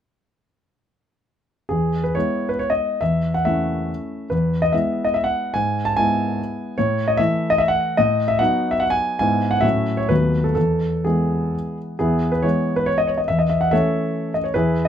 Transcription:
1.69 2.14 E2 soft
1.69 2.03 G#4 medium
2.04 2.15 B4 medium
2.15 2.98 G#3 soft
2.15 2.98 B3 soft
2.15 2.98 E4 soft
2.15 2.49 C#5 medium
2.49 2.60 B4 medium
2.59 2.70 C#5 medium
2.70 3.01 D#5 medium
3.01 3.44 E2 soft
3.01 3.34 E5 medium
3.34 3.46 F#5 medium
3.45 4.28 A3 soft
3.45 4.28 C#4 soft
3.45 4.28 E4 soft
3.45 4.31 E5 medium
4.30 4.72 E2 soft
4.30 4.62 B4 medium
4.62 4.73 D#5 medium
4.72 5.52 G#3 soft
4.72 5.53 B3 soft
4.72 5.53 E4 soft
4.72 5.05 E5 medium
5.05 5.15 D#5 medium
5.14 5.25 E5 medium
5.24 5.55 F#5 medium
5.54 5.95 G#2 soft
5.54 5.85 G#5 medium
5.85 5.96 A5 medium
5.97 6.74 G#3 soft
5.97 6.75 B3 soft
5.97 6.75 E4 soft
5.97 6.78 G#5 medium
6.78 7.17 A2 soft
6.78 7.07 C#5 medium
7.08 7.18 D#5 medium
7.17 7.95 E3 soft
7.17 7.95 A3 soft
7.17 7.96 E4 soft
7.17 7.49 E5 medium
7.50 7.60 D#5 medium
7.58 7.69 E5 medium
7.68 7.98 F#5 medium
7.97 8.38 A2 soft
7.97 8.28 D#5 medium
8.28 8.39 E5 medium
8.39 9.17 F#3 soft
8.39 9.17 B3 soft
8.39 9.18 D#4 soft
8.39 8.71 F#5 medium
8.71 8.81 E5 medium
8.80 8.91 F#5 medium
8.90 9.18 G#5 medium
9.19 9.62 G#2 soft
9.19 9.59 G#3 soft
9.19 9.60 B3 soft
9.19 9.60 E4 soft
9.19 9.51 G#5 medium
9.51 9.63 F#5 medium
9.61 10.08 A2 soft
9.61 10.05 F#3 soft
9.61 10.06 A3 soft
9.61 10.06 C#4 soft
9.61 9.97 E5 medium
9.97 10.10 C#5 medium
10.09 10.54 D#2 soft
10.09 10.52 F#3 soft
10.09 10.52 A3 soft
10.09 10.53 B3 soft
10.09 10.44 B4 medium
10.44 10.53 A4 medium
10.55 11.03 E2 soft
10.55 11.04 A4 medium
11.04 11.96 E3 soft
11.04 11.96 G#3 soft
11.04 11.97 B3 soft
11.04 11.77 G#4 medium
11.99 12.43 E2 soft
11.99 12.30 B3 soft
11.99 12.30 E4 soft
11.99 12.32 G#4 medium
12.32 12.43 B4 medium
12.42 13.24 E3 soft
12.42 13.25 G#3 soft
12.42 13.25 B3 soft
12.42 12.76 C#5 medium
12.76 12.87 B4 medium
12.86 12.97 C#5 medium
12.98 13.08 D#5 medium
13.07 13.18 C#5 medium
13.18 13.28 D#5 soft
13.28 13.71 E2 soft
13.28 13.39 E5 medium
13.39 13.49 D#5 medium
13.50 13.61 E5 medium
13.61 13.72 F#5 medium
13.71 14.52 E3 soft
13.71 14.52 A3 soft
13.71 14.52 C#4 soft
13.71 14.32 A4 medium
13.71 14.32 C#5 medium
13.71 14.35 E5 medium
14.34 14.45 D#5 medium
14.44 14.54 C#5 soft
14.54 14.88 E2 soft
14.54 14.84 E4 medium
14.54 14.84 G#4 soft
14.54 14.86 B4 medium

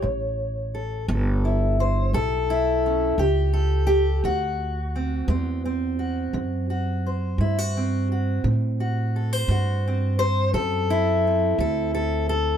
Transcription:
0.00 1.05 A1 medium
0.00 0.66 A2 medium
0.00 2.13 C#5 loud
0.75 1.09 A4 soft
1.08 2.10 G1 loud
1.08 1.72 C#4 medium
1.08 1.80 A4 soft
1.45 2.49 E4 soft
1.80 2.14 C5 medium
2.13 3.15 B1 medium
2.13 2.77 A2 medium
2.13 3.19 A4 loud
2.50 3.19 E4 medium
2.86 3.19 C#4 soft
3.18 4.20 C#2 medium
3.18 3.82 C#4 medium
3.18 3.85 G4 medium
3.54 4.24 A4 medium
3.87 4.23 G4 medium
4.24 5.26 D2 medium
4.24 4.87 D3 medium
4.24 5.98 F#4 medium
4.96 5.29 C4 soft
5.28 6.30 E2 medium
5.28 5.92 A3 medium
5.28 5.65 C4 soft
5.65 7.75 C4 medium
5.99 6.69 F#4 soft
6.33 7.35 F#2 medium
6.33 6.97 D3 medium
6.70 7.40 F#4 soft
7.06 8.41 C5 soft
7.38 8.40 G2 medium
7.38 8.03 A3 medium
7.38 7.58 E4 soft
7.58 8.10 F#4 soft
7.77 9.86 C4 soft
8.12 8.41 F#4 soft
8.44 9.46 A2 medium
8.44 9.07 D3 medium
8.80 9.50 F#4 soft
9.16 9.33 A4 soft
9.33 10.18 C5 soft
9.48 10.50 G2 medium
9.48 10.13 A3 medium
9.48 10.90 F#4 medium
9.88 11.26 C4 soft
10.19 10.54 C5 loud
10.53 11.55 F#2 medium
10.53 11.18 D3 medium
10.53 11.59 A4 loud
10.90 12.29 E4 medium
11.27 12.57 C4 soft
11.58 12.57 D2 medium
11.58 12.22 A3 medium
11.58 11.93 A4 medium
11.94 12.28 A4 medium
12.29 12.57 A4 medium

